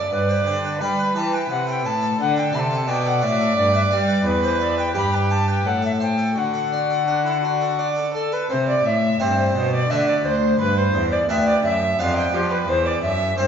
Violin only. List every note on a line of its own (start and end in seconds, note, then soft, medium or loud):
0.10 0.77 D5 medium
0.81 2.17 B4 medium
2.19 2.87 A4 medium
2.88 4.23 D5 medium
4.26 4.94 B4 medium
4.95 5.67 G4 medium
5.66 6.36 A4 medium
6.36 6.99 F#4 medium
7.07 7.24 D4 medium
7.26 7.43 E4 medium
7.43 7.80 F#4 medium
7.79 8.14 D5 medium
8.14 8.34 A4 medium
8.33 8.49 B4 medium
8.50 8.57 C5 medium
8.68 8.87 D5 medium
8.85 9.23 E5 medium
9.21 9.73 C5 medium
9.73 9.92 D5 medium
9.91 10.07 E5 medium
10.08 10.15 D5 medium
10.25 10.59 C5 medium
10.59 10.79 B4 medium
10.78 11.11 C5 medium
11.12 11.19 D5 medium
11.30 11.37 E5 medium
11.47 11.64 D5 medium
11.65 12.01 E5 medium
11.99 12.16 F5 medium
12.17 12.35 G5 medium
12.34 12.52 G4 medium
12.51 12.70 B4 medium
12.68 12.87 C5 medium
12.86 13.03 D5 medium
13.04 13.38 E5 medium
13.39 13.47 C5 medium